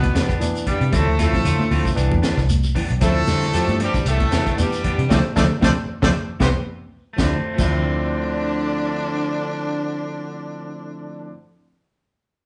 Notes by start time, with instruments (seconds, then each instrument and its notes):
Already playing: bass trombone B2, horn section B3 B4, tenor saxophone B3
0.03 kick, closed hi-hat, high conga
0.14 clean electric guitar C3 E3 B3 D4 G4, tine electric piano E3 B3 D4, snare, closed hi-hat, shekere
0.28 clean electric guitar B3 D4 G4, kick, closed hi-hat, shekere
0.40 clean electric guitar B2, tine electric piano E3 B3 D4, closed hi-hat, high conga, shekere
0.55 closed hi-hat, shekere
0.66 bass trombone G2, clean electric guitar E3 B3 D4 G4, horn section G3 G4, tenor saxophone G3, kick, closed hi-hat, low conga, shekere
0.81 fingered electric bass C3, clean electric guitar C3, closed hi-hat
0.92 fingered electric bass D2, bass trombone A2, tine electric piano F3 C4 E4, clean electric guitar A3 C4, horn section A3 A4, tenor saxophone A3, muted clean electric guitar stroke, kick, closed hi-hat, high conga, low conga, shekere
1.07 fingered electric bass D2
1.18 bass trombone A2, tine electric piano F3 C4 E4, clean electric guitar A3 C4 F4, horn section A3 A4, tenor saxophone A3, closed hi-hat, high conga, shekere
1.33 clean electric guitar F3, kick, snare
1.44 fingered electric bass D3, clean electric guitar A3 C4 F4, closed hi-hat, high conga, shekere
1.59 clean electric guitar D3, high conga, shekere
1.70 fingered electric bass D2, tine electric piano F3 C4 E4, clean electric guitar A3 C4 F4, open hi-hat, high conga, shekere
1.85 clean electric guitar C3, kick, shekere
1.95 fingered electric bass C2, tine electric piano E3 B3 D4, clean electric guitar E3 D4 G4, muted clean electric guitar stroke, closed hi-hat, shekere
2.11 fingered electric bass E2, clean electric guitar D3, kick, high conga
2.22 clean electric guitar E3 B3 D4, muted clean electric guitar stroke, snare, closed hi-hat, shekere
2.37 fingered electric bass C2, clean electric guitar C3, kick, snare, shekere
2.49 closed hi-hat, high conga, shekere
2.64 high conga, shekere
2.75 clean electric guitar E3 B3 D4 G4, kick, open hi-hat, low conga, shekere
2.90 fingered electric bass B1, closed hi-hat
3.00 fingered electric bass D2, bass trombone A2, tine electric piano F3 C4 E4, clean electric guitar F3 C4 D4 A4, tenor saxophone A3, horn section A3 A4, kick, snare, closed hi-hat, high conga, low conga, shekere
3.27 fingered electric bass D3, clean electric guitar F3 G3 C4 D4 A4, snare, closed hi-hat, high conga, shekere
3.42 snare, closed hi-hat
3.53 tine electric piano F3 C4 G4, clean electric guitar F3 C4 D4 A4, muted fingered electric bass stroke, closed hi-hat, high conga, shekere
3.68 fingered electric bass G2, closed hi-hat, high conga, shekere
3.80 bass trombone G2, clean electric guitar F3 C4 D4 A4, tenor saxophone G3, horn section G3 G4, closed hi-hat, high conga, shekere
3.94 clean electric guitar E3, kick, closed hi-hat, low conga, shekere
4.06 fingered electric bass C2, bass trombone A2, clean electric guitar E3 B3 D4 G4, tenor saxophone A3, horn section A3 A4, closed hi-hat, high conga, shekere
4.20 kick, closed hi-hat, high conga
4.31 clean electric guitar C3 E3 B3 D4 G4, tine electric piano E3 B3 D4, snare, closed hi-hat, shekere
4.46 clean electric guitar B3 D4 G4, kick, closed hi-hat, shekere
4.57 bass trombone G2, clean electric guitar B2, tine electric piano E3 B3 D4, closed hi-hat, high conga, shekere
4.61 horn section G3 G4, tenor saxophone G3
4.72 closed hi-hat, shekere
4.84 clean electric guitar E3 B3 D4, muted clean electric guitar stroke, kick, closed hi-hat, low conga, shekere
4.98 fingered electric bass C3, clean electric guitar C3, closed hi-hat
5.09 fingered electric bass D2, bass trombone A2, clean electric guitar C3 D3 F3 A3 C4 D4, tine electric piano A3 C4 D4, tenor saxophone A3, horn section D4 A4 C5 D5, kick, snare, high conga, shekere
5.35 fingered electric bass D2, bass trombone A2, clean electric guitar C3 D3 F3 A3 C4 D4, tine electric piano A3 C4 D4, tenor saxophone A3, horn section D4 A4 C5 D5, kick, snare, high conga, shekere
5.61 fingered electric bass D2, bass trombone A2, clean electric guitar C3 D3 F3 A3 C4 D4, tine electric piano A3 C4 D4, tenor saxophone A3, horn section D4 A4 C5 D5, kick, snare, high conga, shekere
6.01 fingered electric bass D2, bass trombone A2, clean electric guitar C3 D3 F3 A3 C4 D4, tine electric piano A3 C4 D4, tenor saxophone A3, horn section D4 A4 C5 D5, kick, snare, high conga, shekere
6.40 fingered electric bass C2, bass trombone G2, clean electric guitar B2 C3 E3 B3 C4 E4, tenor saxophone G3, tine electric piano B3 C4 E4, horn section C4 G4 B4 C5, kick, snare, high conga, shekere
7.13 tine electric piano F3, clean electric guitar A3
7.18 fingered electric bass D2, bass trombone D3, clean electric guitar D3, horn section D3 D4, tine electric piano C4 E4, tenor saxophone D4, kick, snare, low conga, shekere
7.22 clean electric guitar C4
7.54 tine electric piano F3, clean electric guitar A3
7.58 fingered electric bass D2, clean electric guitar D3, bass trombone D3, horn section D3 D4, tine electric piano C4 E4, tenor saxophone D4, kick, crash, low conga, shekere
7.63 clean electric guitar C4